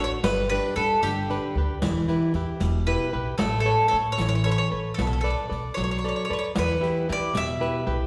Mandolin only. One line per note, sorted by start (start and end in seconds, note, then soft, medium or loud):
0.04 0.11 C#5 medium
0.24 0.48 B4 medium
0.50 0.74 B4 medium
0.76 1.01 A4 medium
1.03 1.58 G4 medium
2.87 3.36 B4 medium
3.38 3.59 A4 medium
3.60 3.87 A4 medium
3.88 3.96 A4 medium
4.12 4.20 C#5 medium
4.21 4.27 C#5 medium
4.29 4.34 C#5 medium
4.35 4.43 C#5 medium
4.44 4.50 C#5 medium
4.51 4.57 C#5 medium
4.58 4.68 C#5 medium
4.94 5.00 A4 medium
5.01 5.06 A4 soft
5.07 5.12 A4 soft
5.13 5.19 A4 soft
5.21 5.29 A4 medium
5.30 5.40 A4 soft
5.74 5.82 C#5 medium
5.84 5.90 C#5 soft
5.91 5.97 C#5 medium
5.98 6.06 C#5 soft
6.08 6.15 C#5 medium
6.16 6.23 C#5 soft
6.25 6.31 C#5 medium
6.33 6.37 C#5 medium
6.39 6.45 C#5 medium
6.58 7.06 B4 medium
7.12 7.37 D5 medium
7.37 7.91 E5 medium